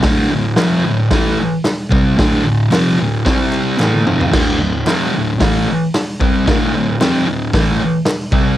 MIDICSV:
0, 0, Header, 1, 3, 480
1, 0, Start_track
1, 0, Key_signature, -1, "minor"
1, 0, Tempo, 534759
1, 36, Time_signature, 4, 2, 24, 8
1, 7697, End_track
2, 0, Start_track
2, 0, Title_t, "Distorted electric guitar"
2, 0, Program_c, 0, 30
2, 33, Note_on_c, 0, 38, 98
2, 40, Note_on_c, 0, 45, 109
2, 53, Note_on_c, 0, 50, 116
2, 262, Note_off_c, 0, 38, 0
2, 263, Note_off_c, 0, 45, 0
2, 273, Note_on_c, 0, 38, 67
2, 273, Note_on_c, 0, 45, 71
2, 279, Note_off_c, 0, 50, 0
2, 468, Note_off_c, 0, 38, 0
2, 469, Note_off_c, 0, 45, 0
2, 507, Note_on_c, 0, 41, 89
2, 515, Note_on_c, 0, 48, 86
2, 524, Note_on_c, 0, 53, 104
2, 747, Note_off_c, 0, 41, 0
2, 751, Note_off_c, 0, 48, 0
2, 756, Note_off_c, 0, 53, 0
2, 763, Note_on_c, 0, 38, 68
2, 772, Note_on_c, 0, 45, 78
2, 955, Note_off_c, 0, 38, 0
2, 959, Note_off_c, 0, 45, 0
2, 992, Note_on_c, 0, 45, 93
2, 1005, Note_on_c, 0, 52, 98
2, 1011, Note_on_c, 0, 57, 104
2, 1231, Note_off_c, 0, 45, 0
2, 1237, Note_off_c, 0, 52, 0
2, 1241, Note_off_c, 0, 57, 0
2, 1704, Note_on_c, 0, 48, 94
2, 1716, Note_on_c, 0, 55, 98
2, 1723, Note_on_c, 0, 60, 92
2, 1945, Note_off_c, 0, 48, 0
2, 1949, Note_on_c, 0, 38, 97
2, 1955, Note_off_c, 0, 55, 0
2, 1959, Note_off_c, 0, 60, 0
2, 1961, Note_on_c, 0, 45, 100
2, 1970, Note_on_c, 0, 50, 119
2, 2184, Note_off_c, 0, 38, 0
2, 2186, Note_off_c, 0, 45, 0
2, 2195, Note_on_c, 0, 38, 65
2, 2196, Note_on_c, 0, 45, 74
2, 2203, Note_off_c, 0, 50, 0
2, 2395, Note_off_c, 0, 38, 0
2, 2396, Note_off_c, 0, 45, 0
2, 2430, Note_on_c, 0, 41, 90
2, 2440, Note_on_c, 0, 48, 93
2, 2446, Note_on_c, 0, 53, 99
2, 2674, Note_off_c, 0, 41, 0
2, 2679, Note_off_c, 0, 48, 0
2, 2682, Note_off_c, 0, 53, 0
2, 2682, Note_on_c, 0, 38, 64
2, 2685, Note_on_c, 0, 45, 73
2, 2880, Note_off_c, 0, 38, 0
2, 2881, Note_off_c, 0, 45, 0
2, 2914, Note_on_c, 0, 48, 97
2, 2923, Note_on_c, 0, 55, 109
2, 2929, Note_on_c, 0, 60, 110
2, 3391, Note_off_c, 0, 48, 0
2, 3395, Note_on_c, 0, 45, 92
2, 3397, Note_off_c, 0, 55, 0
2, 3400, Note_on_c, 0, 52, 91
2, 3405, Note_off_c, 0, 60, 0
2, 3409, Note_on_c, 0, 57, 103
2, 3637, Note_off_c, 0, 45, 0
2, 3640, Note_off_c, 0, 52, 0
2, 3640, Note_on_c, 0, 41, 93
2, 3645, Note_off_c, 0, 57, 0
2, 3646, Note_on_c, 0, 48, 97
2, 3657, Note_on_c, 0, 53, 92
2, 3875, Note_off_c, 0, 41, 0
2, 3879, Note_on_c, 0, 38, 97
2, 3884, Note_off_c, 0, 48, 0
2, 3889, Note_off_c, 0, 53, 0
2, 3890, Note_on_c, 0, 45, 100
2, 3893, Note_on_c, 0, 50, 115
2, 4112, Note_off_c, 0, 38, 0
2, 4116, Note_off_c, 0, 45, 0
2, 4123, Note_on_c, 0, 38, 70
2, 4126, Note_on_c, 0, 45, 74
2, 4127, Note_off_c, 0, 50, 0
2, 4321, Note_off_c, 0, 38, 0
2, 4323, Note_off_c, 0, 45, 0
2, 4370, Note_on_c, 0, 41, 93
2, 4379, Note_on_c, 0, 48, 96
2, 4382, Note_on_c, 0, 53, 101
2, 4605, Note_off_c, 0, 41, 0
2, 4610, Note_off_c, 0, 48, 0
2, 4611, Note_off_c, 0, 53, 0
2, 4616, Note_on_c, 0, 38, 64
2, 4620, Note_on_c, 0, 45, 76
2, 4807, Note_off_c, 0, 38, 0
2, 4809, Note_off_c, 0, 45, 0
2, 4845, Note_on_c, 0, 45, 89
2, 4859, Note_on_c, 0, 52, 107
2, 4864, Note_on_c, 0, 57, 107
2, 5082, Note_off_c, 0, 45, 0
2, 5089, Note_off_c, 0, 52, 0
2, 5092, Note_off_c, 0, 57, 0
2, 5565, Note_on_c, 0, 48, 87
2, 5574, Note_on_c, 0, 55, 105
2, 5581, Note_on_c, 0, 60, 104
2, 5798, Note_off_c, 0, 48, 0
2, 5802, Note_on_c, 0, 38, 110
2, 5805, Note_off_c, 0, 55, 0
2, 5808, Note_off_c, 0, 60, 0
2, 5813, Note_on_c, 0, 45, 101
2, 5824, Note_on_c, 0, 50, 112
2, 6038, Note_off_c, 0, 38, 0
2, 6044, Note_off_c, 0, 45, 0
2, 6049, Note_off_c, 0, 50, 0
2, 6052, Note_on_c, 0, 38, 65
2, 6053, Note_on_c, 0, 45, 76
2, 6242, Note_off_c, 0, 38, 0
2, 6242, Note_off_c, 0, 45, 0
2, 6281, Note_on_c, 0, 41, 91
2, 6288, Note_on_c, 0, 48, 102
2, 6298, Note_on_c, 0, 53, 109
2, 6516, Note_off_c, 0, 41, 0
2, 6519, Note_off_c, 0, 48, 0
2, 6519, Note_on_c, 0, 38, 71
2, 6524, Note_off_c, 0, 53, 0
2, 6529, Note_on_c, 0, 45, 72
2, 6713, Note_off_c, 0, 38, 0
2, 6718, Note_off_c, 0, 45, 0
2, 6762, Note_on_c, 0, 45, 91
2, 6769, Note_on_c, 0, 52, 101
2, 6777, Note_on_c, 0, 57, 99
2, 6993, Note_off_c, 0, 45, 0
2, 6997, Note_off_c, 0, 52, 0
2, 7001, Note_off_c, 0, 57, 0
2, 7469, Note_on_c, 0, 48, 95
2, 7482, Note_on_c, 0, 55, 106
2, 7488, Note_on_c, 0, 60, 108
2, 7697, Note_off_c, 0, 48, 0
2, 7697, Note_off_c, 0, 55, 0
2, 7697, Note_off_c, 0, 60, 0
2, 7697, End_track
3, 0, Start_track
3, 0, Title_t, "Drums"
3, 23, Note_on_c, 9, 38, 114
3, 23, Note_on_c, 9, 46, 65
3, 33, Note_on_c, 9, 36, 110
3, 113, Note_off_c, 9, 38, 0
3, 113, Note_off_c, 9, 46, 0
3, 122, Note_off_c, 9, 36, 0
3, 505, Note_on_c, 9, 38, 112
3, 505, Note_on_c, 9, 46, 57
3, 524, Note_on_c, 9, 39, 94
3, 595, Note_off_c, 9, 38, 0
3, 595, Note_off_c, 9, 46, 0
3, 614, Note_off_c, 9, 39, 0
3, 993, Note_on_c, 9, 38, 113
3, 993, Note_on_c, 9, 46, 63
3, 997, Note_on_c, 9, 36, 107
3, 1082, Note_off_c, 9, 38, 0
3, 1082, Note_off_c, 9, 46, 0
3, 1087, Note_off_c, 9, 36, 0
3, 1474, Note_on_c, 9, 38, 117
3, 1474, Note_on_c, 9, 46, 60
3, 1489, Note_on_c, 9, 39, 95
3, 1563, Note_off_c, 9, 38, 0
3, 1563, Note_off_c, 9, 46, 0
3, 1579, Note_off_c, 9, 39, 0
3, 1721, Note_on_c, 9, 36, 105
3, 1811, Note_off_c, 9, 36, 0
3, 1963, Note_on_c, 9, 36, 101
3, 1965, Note_on_c, 9, 38, 113
3, 1965, Note_on_c, 9, 46, 61
3, 2053, Note_off_c, 9, 36, 0
3, 2055, Note_off_c, 9, 38, 0
3, 2055, Note_off_c, 9, 46, 0
3, 2441, Note_on_c, 9, 39, 94
3, 2445, Note_on_c, 9, 38, 103
3, 2445, Note_on_c, 9, 46, 57
3, 2530, Note_off_c, 9, 39, 0
3, 2534, Note_off_c, 9, 38, 0
3, 2534, Note_off_c, 9, 46, 0
3, 2928, Note_on_c, 9, 36, 108
3, 2929, Note_on_c, 9, 38, 108
3, 2929, Note_on_c, 9, 46, 59
3, 3018, Note_off_c, 9, 36, 0
3, 3018, Note_off_c, 9, 38, 0
3, 3018, Note_off_c, 9, 46, 0
3, 3168, Note_on_c, 9, 39, 71
3, 3258, Note_off_c, 9, 39, 0
3, 3407, Note_on_c, 9, 39, 97
3, 3410, Note_on_c, 9, 38, 64
3, 3497, Note_off_c, 9, 39, 0
3, 3500, Note_off_c, 9, 38, 0
3, 3535, Note_on_c, 9, 48, 65
3, 3625, Note_off_c, 9, 48, 0
3, 3652, Note_on_c, 9, 45, 86
3, 3742, Note_off_c, 9, 45, 0
3, 3777, Note_on_c, 9, 43, 98
3, 3867, Note_off_c, 9, 43, 0
3, 3890, Note_on_c, 9, 38, 115
3, 3890, Note_on_c, 9, 49, 100
3, 3893, Note_on_c, 9, 36, 108
3, 3979, Note_off_c, 9, 38, 0
3, 3979, Note_off_c, 9, 49, 0
3, 3982, Note_off_c, 9, 36, 0
3, 4371, Note_on_c, 9, 38, 102
3, 4371, Note_on_c, 9, 39, 95
3, 4371, Note_on_c, 9, 46, 61
3, 4461, Note_off_c, 9, 38, 0
3, 4461, Note_off_c, 9, 39, 0
3, 4461, Note_off_c, 9, 46, 0
3, 4851, Note_on_c, 9, 38, 117
3, 4851, Note_on_c, 9, 46, 65
3, 4853, Note_on_c, 9, 36, 106
3, 4940, Note_off_c, 9, 38, 0
3, 4940, Note_off_c, 9, 46, 0
3, 4943, Note_off_c, 9, 36, 0
3, 5334, Note_on_c, 9, 38, 111
3, 5334, Note_on_c, 9, 46, 62
3, 5340, Note_on_c, 9, 39, 91
3, 5423, Note_off_c, 9, 38, 0
3, 5423, Note_off_c, 9, 46, 0
3, 5430, Note_off_c, 9, 39, 0
3, 5573, Note_on_c, 9, 36, 104
3, 5662, Note_off_c, 9, 36, 0
3, 5812, Note_on_c, 9, 36, 114
3, 5813, Note_on_c, 9, 38, 116
3, 5813, Note_on_c, 9, 46, 60
3, 5902, Note_off_c, 9, 36, 0
3, 5903, Note_off_c, 9, 38, 0
3, 5903, Note_off_c, 9, 46, 0
3, 6291, Note_on_c, 9, 38, 108
3, 6291, Note_on_c, 9, 46, 56
3, 6297, Note_on_c, 9, 39, 91
3, 6381, Note_off_c, 9, 38, 0
3, 6381, Note_off_c, 9, 46, 0
3, 6386, Note_off_c, 9, 39, 0
3, 6763, Note_on_c, 9, 36, 108
3, 6766, Note_on_c, 9, 38, 107
3, 6766, Note_on_c, 9, 46, 60
3, 6852, Note_off_c, 9, 36, 0
3, 6856, Note_off_c, 9, 38, 0
3, 6856, Note_off_c, 9, 46, 0
3, 7229, Note_on_c, 9, 38, 112
3, 7229, Note_on_c, 9, 46, 60
3, 7247, Note_on_c, 9, 39, 107
3, 7318, Note_off_c, 9, 38, 0
3, 7318, Note_off_c, 9, 46, 0
3, 7336, Note_off_c, 9, 39, 0
3, 7468, Note_on_c, 9, 36, 107
3, 7558, Note_off_c, 9, 36, 0
3, 7697, End_track
0, 0, End_of_file